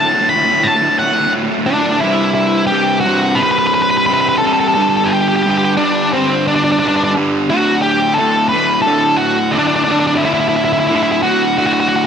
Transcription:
Already playing: A5
0.06 D2 A2
0.14 D2 A2
0.21 D2 A2
0.28 D2 A2 B5
0.36 D2 A2
0.45 D2 A2
0.51 D2 A2
0.60 D2 A2 A5
0.67 D2 A2
0.74 D2 A2
0.82 D2 A2
0.90 D2 A2
0.98 D2 A2 F#5
1.05 D2 A2
1.12 D2 A2
1.20 D2 A2
1.28 D2 A2
1.36 D2 A2
1.44 D2 A2
1.51 D2 A2
1.58 D2 A2
1.66 D2 A2 D4
1.73 D2 A2
1.81 D2 A2
1.89 D2 A2
1.97 D2 A2 E4
2.03 C2 G2 C3
2.35 E4
2.67 G4
2.71 C2 G2 C3
3.01 F#4
3.06 C2 G2 C3
3.35 B4
3.41 C2 G2 C3 B4
3.51 B4
3.59 B4
3.67 B4
3.74 B4
3.82 B4
3.91 B4
3.97 B4
4.06 C2 G2 C3 B4
4.14 B4
4.21 B4
4.29 B4
4.36 A4 B4
4.43 C2 G2 C3
4.47 A4
4.53 A4
4.60 A4
4.68 A4
4.75 G2 D3 G3 A4
4.82 A4
4.89 A4
4.97 A4
5.04 G4 A4
5.13 G4
5.21 G4
5.28 G4
5.36 G4
5.43 G2 D3 G3 G4
5.51 G4
5.58 G4
5.65 G4
5.77 G2 D3 G3 D4
6.13 G2 D3 G3 C4
6.47 D4
6.55 D4
6.64 D4
6.72 D4
6.79 G2 D4
6.83 D3 G3
6.88 D4
6.96 D4
7.04 D4
7.16 G2 D3 G3
7.50 D2 A2 D3 F#4
7.82 G4
8.14 D2 A4
8.19 A2 D3
8.49 B4
8.53 D2 A2 D3
8.82 A4
8.87 D2 A2 D3
9.16 F#4
9.51 D4
9.56 D2 A2 D3 D4
9.67 D4
9.76 D4
9.84 D4
9.89 D2 A2 D3 D4
10.00 D4
10.07 D4
10.15 D4 E4
10.23 D2 A2 D3 E4
10.34 E4
10.40 E4
10.49 E4
10.56 E4
10.65 E4
10.73 E4
10.80 E4
10.87 D2 A2 E4
10.91 D3
10.95 E4
11.03 E4
11.12 E4
11.23 D2 A2 D3 F#4
11.58 D2 A2 D3 F#4
11.66 F#4
11.73 F#4
11.80 F#4
11.89 F#4
11.96 F#4

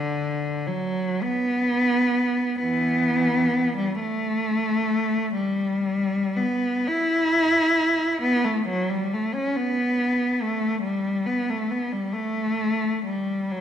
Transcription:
Already playing: D3
0.67 F#3
1.22 B3
2.60 E3 B3
3.78 G3
4.00 A3
5.36 G3
6.36 B3
6.87 E4
8.22 B3
8.45 A3
8.68 F#3
8.89 G3
9.13 A3
9.34 C#4
9.56 B3
10.42 A3
10.82 G3
11.26 B3
11.50 A3
11.71 B3
11.92 G3
12.13 A3
13.06 G3
13.51 F#3

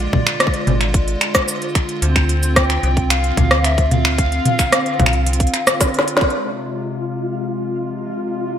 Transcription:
Already playing: D3 G#3 F4 D5
0.00 closed hi-hat
0.13 kick, mid tom
0.27 finger snap, closed hi-hat
0.40 cross-stick, closed hi-hat
0.47 kick
0.54 closed hi-hat
0.67 G#1, closed hi-hat, mid tom
0.81 finger snap, closed hi-hat
0.94 kick, closed hi-hat
1.08 closed hi-hat
1.21 finger snap, closed hi-hat
1.35 kick, cross-stick, closed hi-hat, cabasa
1.48 cabasa
1.62 closed hi-hat
1.75 finger snap, kick, closed hi-hat
1.89 closed hi-hat
2.02 D2 C4 C5, closed hi-hat
2.16 finger snap, kick, closed hi-hat
2.29 closed hi-hat
2.43 closed hi-hat, cabasa
2.56 G5, kick, cross-stick, closed hi-hat
2.70 finger snap, closed hi-hat
2.83 C2, closed hi-hat
2.97 kick, closed hi-hat
3.10 F5, finger snap, closed hi-hat
3.24 closed hi-hat
3.37 D2, kick, closed hi-hat, mid tom
3.51 cross-stick, closed hi-hat
3.64 E5, finger snap, closed hi-hat
3.78 kick, closed hi-hat
3.91 F5, closed hi-hat, mid tom
4.05 finger snap
4.18 kick, closed hi-hat
4.32 closed hi-hat
4.45 closed hi-hat, mid tom
4.59 finger snap, kick, closed hi-hat, cabasa
4.72 cross-stick, closed hi-hat
4.86 closed hi-hat
5.00 C2, kick, closed hi-hat, mid tom
5.06 finger snap
5.13 closed hi-hat
5.26 closed hi-hat
5.33 closed hi-hat
5.40 kick, closed hi-hat
5.47 closed hi-hat
5.54 finger snap, closed hi-hat
5.67 cross-stick, cabasa
5.81 kick, snare, closed hi-hat, cabasa
5.94 closed hi-hat
5.99 snare
6.08 closed hi-hat
6.17 snare
6.21 kick, closed hi-hat
6.30 closed hi-hat
6.35 C3 G#3 F4 F5
6.39 closed hi-hat

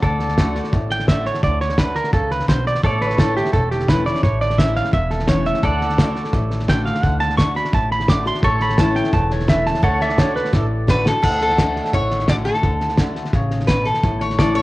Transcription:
0.02 D2 D3 A4 D5, kick, snare
0.20 snare
0.29 snare
0.38 D3 A3 D4 F#4, kick, snare, hi-hat pedal
0.55 snare
0.64 snare
0.73 A1 A2, kick, snare
0.90 G5, snare
1.00 snare
1.08 D3 A3 D4 F#4 E5, kick, snare, hi-hat pedal
1.26 C#5, snare
1.34 snare
1.43 D2 D3 D5, kick, snare
1.61 C#5, snare
1.70 snare
1.77 D3 A3 D4 F#4 B4, kick, snare, hi-hat pedal
1.95 A#4, snare
2.04 snare
2.13 C#2 C#3 A4, kick, snare
2.31 B4, snare
2.40 snare
2.48 B1 B2 C5, kick, snare, hi-hat pedal
2.67 D5, snare
2.75 snare
2.84 A1 A2 A4 C#5 D5, kick, snare
3.01 B4, snare
3.06 C#5, snare
3.18 E3 A3 C#4 E4 A4, kick, snare, hi-hat pedal
3.37 G4, snare
3.45 snare
3.53 E1 E2 A4, kick, snare
3.71 G4, snare
3.80 snare
3.88 E3 A3 C#4 E4 B4, kick, snare, hi-hat pedal
4.06 C#4 E4 D5, snare
4.15 snare
4.23 A1 A2 C#5, kick, snare
4.41 D5, snare
4.50 snare
4.58 E3 A3 C#4 E4 E5, kick, snare, hi-hat pedal
4.76 F5, snare
4.84 snare
4.93 E1 E2 E5, kick, snare
5.10 A4, snare
5.19 snare
5.27 E3 A3 C#4 E4 C#5, kick, snare, hi-hat pedal
5.45 E5, snare
5.54 snare
5.63 D2 D3 A4 D5 F#5, kick, snare
5.81 snare
5.90 snare
5.98 D3 A3 D4 F#4, kick, snare, hi-hat pedal
6.16 snare
6.25 snare
6.33 A1 A2, kick, snare
6.51 snare
6.60 snare
6.68 D3 A3 D4 F#4 G5, kick, snare, hi-hat pedal
6.86 F5, snare
6.95 snare
7.03 D2 D3 F#5, kick, snare
7.20 A5, snare
7.30 snare
7.37 D3 A3 D4 F#4 C#6, kick, snare, hi-hat pedal
7.55 D4 F#4 B5, snare
7.65 snare
7.73 A1 A2 A5, kick, snare
7.91 B5, snare
8.00 snare
8.08 D3 A3 D4 F#4 D6, kick, snare, hi-hat pedal
8.25 D4 F#4 C6, snare
8.34 snare
8.42 A1 A2 A4 C#5 C#6, kick, snare
8.60 B5, snare
8.69 snare
8.78 E3 A3 C#4 E4 A5, kick, snare, hi-hat pedal
8.95 G5, snare
9.04 snare
9.13 E1 E2 A5, kick, snare
9.31 C#5, snare
9.40 snare
9.47 E3 A3 C#4 E4 E5, kick, snare, hi-hat pedal
9.66 A5, snare
9.75 snare
9.82 D2 D3 A4 C#5 F#5, kick, snare
10.01 D5 E5, snare
10.10 snare
10.18 D3 A3 D4 F#4 C#5, kick, snare, hi-hat pedal
10.36 B4, snare
10.45 snare
10.53 A1 A2 A4, kick, snare
10.87 D3 A3 D4 F#4 B4, kick, snare, hi-hat pedal
11.05 D4 F#4 A4, snare
11.22 D2 D3 A4 F#5, kick, snare, crash
11.41 A4, snare
11.50 snare
11.58 D3 A3 D4 F#4, kick, snare, hi-hat pedal
11.76 snare
11.85 snare
11.93 A1 A2 C#5, kick, snare
12.11 snare
12.19 snare
12.28 D3 A3 D4 F#4 D5, kick, snare, hi-hat pedal
12.45 A4, snare
12.54 snare
12.63 D2 D3, kick, snare
12.81 snare
12.89 snare
12.97 D3 A3 D4 F#4, kick, snare, hi-hat pedal
13.16 snare
13.25 snare
13.33 A1 C#3, kick, snare
13.51 snare
13.60 snare
13.67 B2 B4, kick, snare, hi-hat pedal
13.85 A4, snare
13.94 snare
14.03 A1 A2, kick, snare
14.21 C#5, snare
14.30 snare
14.38 E3 A3 C#4 E4 A4 D5, kick, snare, hi-hat pedal
14.55 C#5, snare
14.60 C#5

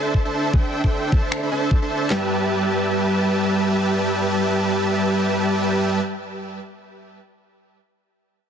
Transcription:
Already playing: D4 A4 C5 E5 A5
0.14 kick
0.25 D4 A4 C5 E5 A5
0.53 D4 A4 C5 E5 G5, kick
0.84 D4 A4 C5 E5 G5, kick
1.12 D4 A4 C5 E5 A5, kick
1.32 finger snap
1.43 D4 A4 C5 E5 B5
1.52 D4 A4 C5 E5 A5
1.71 kick
1.82 D4 A4 C5 E5 A5
2.10 G3 G4 B4 E5 A5, snare, clap

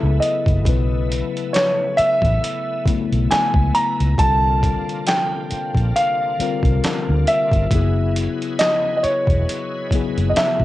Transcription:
Already playing: C#3 F#3 A3 B3 E4 G#4 A4 E5
0.03 C#2
0.20 D#5, closed hi-hat
0.46 F#1, kick, closed hi-hat
0.65 B1 C#3 F#3 B3 E4, kick, closed hi-hat
0.69 B4
1.12 closed hi-hat
1.37 closed hi-hat
1.53 C#5, snare, clap, closed hi-hat
1.97 E5, muted fingered electric bass stroke, closed hi-hat
2.22 A1, kick, closed hi-hat
2.44 closed hi-hat
2.85 C#3 F#3 B3 E4, muted fingered electric bass stroke, kick, closed hi-hat
2.90 A3
3.12 B1, closed hi-hat
3.31 G#5, snare, clap, closed hi-hat
3.54 C#2, kick
3.75 A#5, closed hi-hat
4.00 C#2, closed hi-hat
4.18 C2 C3 D3 G3 A#3 C4 D4 F4 A5, kick, closed hi-hat
4.22 A4
4.63 kick, closed hi-hat
4.89 closed hi-hat
5.07 G5, snare, clap, closed hi-hat
5.51 muted fingered electric bass stroke, closed hi-hat
5.75 A#1, kick, closed hi-hat
5.96 F5, closed hi-hat
6.38 D3 G3 C4 F4, muted fingered electric bass stroke, closed hi-hat
6.42 A#4
6.63 C2, kick, closed hi-hat
6.84 snare, clap, closed hi-hat
7.09 D2
7.27 E5, closed hi-hat
7.51 G1, kick, closed hi-hat
7.71 F#1 C#3 F#3 A#3 E4 G#4 B4, kick, closed hi-hat
7.75 G#4
7.79 B3
8.16 closed hi-hat
8.42 closed hi-hat
8.59 D#5, snare, clap, closed hi-hat
8.97 D#5
9.03 C#5, muted fingered electric bass stroke, closed hi-hat
9.27 E1, kick, closed hi-hat
9.49 closed hi-hat
9.91 C#3 F#3 B3 E4, muted fingered electric bass stroke, kick, closed hi-hat
9.95 G#4
10.18 F#1, closed hi-hat
10.29 D#5
10.36 E5, snare, clap, closed hi-hat
10.60 G#1, kick

